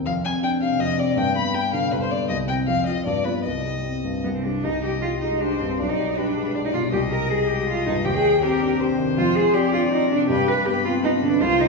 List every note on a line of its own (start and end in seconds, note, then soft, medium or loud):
0.05 0.78 F2 soft
0.05 0.13 F5 medium
0.24 0.54 C4 soft
0.24 0.32 G#5 medium
0.43 0.72 D4 soft
0.43 0.50 G5 medium
0.61 0.91 C3 soft
0.61 0.82 F5 medium
0.79 1.16 F2 soft
0.79 1.00 D#5 medium
0.98 1.17 C4 soft
0.98 1.19 D5 medium
1.16 1.91 G2 soft
1.16 1.35 G5 medium
1.36 1.66 B3 soft
1.36 1.56 B5 medium
1.54 1.85 D4 soft
1.54 1.73 G5 medium
1.73 2.03 D3 soft
1.73 1.93 F5 medium
1.91 2.29 G2 soft
1.91 2.01 B4 medium
2.02 2.12 C5 soft
2.11 2.30 B3 soft
2.11 2.28 D5 medium
2.29 2.67 C2 soft
2.29 2.36 D#5 medium
2.48 2.65 C4 soft
2.48 2.66 G4 soft
2.48 2.56 G5 medium
2.67 3.05 F2 soft
2.67 2.86 F5 medium
2.86 3.04 C4 soft
2.86 3.04 F4 soft
2.86 3.05 D#5 medium
3.05 3.44 G2 soft
3.05 3.26 D5 medium
3.24 3.43 B3 soft
3.24 3.43 F4 soft
3.24 3.44 B4 soft
3.44 4.23 C2 soft
3.44 4.23 D#5 medium
3.65 3.97 G3 soft
3.85 4.17 C4 soft
4.05 4.37 G2 soft
4.24 4.63 C2 soft
4.24 4.28 B3 soft
4.35 4.45 C4 soft
4.44 4.65 G3 soft
4.44 4.65 D4 soft
4.64 5.75 C2 soft
4.64 4.83 D#4 medium
4.64 5.37 D#5 soft
4.83 4.91 G4 medium
4.83 5.14 G4 soft
5.02 5.34 G3 soft
5.02 5.10 F4 medium
5.21 5.41 G#3 soft
5.21 5.42 D#4 medium
5.40 5.72 G3 soft
5.40 5.61 D4 medium
5.40 5.78 C5 soft
5.60 5.79 G2 soft
5.60 5.79 C4 medium
5.79 6.90 B1 soft
5.79 5.90 D4 medium
5.79 6.19 D5 soft
5.89 6.19 D#4 medium
5.98 6.28 G4 soft
6.17 6.47 G3 soft
6.17 6.54 D4 medium
6.17 6.57 B4 soft
6.36 6.55 G#3 soft
6.55 6.85 G3 soft
6.55 6.59 D4 medium
6.55 6.92 D5 soft
6.65 6.68 D#4 medium
6.73 6.92 B2 soft
6.73 6.81 F4 medium
6.92 8.02 C2 soft
6.92 7.00 G4 medium
6.92 8.06 D#5 medium
7.11 7.41 G4 soft
7.11 7.31 A#4 medium
7.30 7.61 G3 soft
7.30 7.50 G#4 medium
7.48 7.68 G#3 soft
7.48 7.68 G4 medium
7.68 7.98 G3 soft
7.68 7.86 F4 medium
7.86 8.05 G2 soft
7.86 7.94 D#4 medium
8.05 9.14 D#2 soft
8.05 8.08 G4 medium
8.05 8.43 G5 medium
8.14 8.41 G#4 medium
8.24 8.54 G4 soft
8.42 8.73 C4 soft
8.42 8.79 G4 medium
8.42 8.81 A#4 medium
8.61 8.80 D4 soft
8.80 9.10 C4 soft
8.80 9.55 C5 medium
8.99 9.17 D#3 soft
9.17 10.26 F2 soft
9.17 9.37 F4 medium
9.36 9.55 G#4 medium
9.36 9.66 G#4 soft
9.54 9.84 C4 soft
9.54 9.73 G4 medium
9.54 10.29 D5 medium
9.72 9.91 D4 soft
9.72 9.81 F4 medium
9.91 10.21 C4 soft
9.91 10.10 D#4 medium
10.10 10.29 C3 soft
10.10 10.28 D4 medium
10.29 11.37 G2 soft
10.29 10.49 G4 medium
10.29 10.66 B4 medium
10.47 10.77 G4 soft
10.47 10.67 B4 medium
10.66 10.96 B3 soft
10.66 10.84 G4 medium
10.66 11.39 B4 medium
10.85 11.04 C4 soft
10.85 10.92 F4 medium
11.04 11.33 B3 soft
11.04 11.11 D#4 medium
11.22 11.41 D3 soft
11.22 11.43 D4 medium
11.41 11.68 C2 soft
11.41 11.62 F4 medium
11.41 11.68 C5 medium
11.60 11.68 D#4 soft
11.60 11.68 D#4 medium
11.60 11.68 G4 soft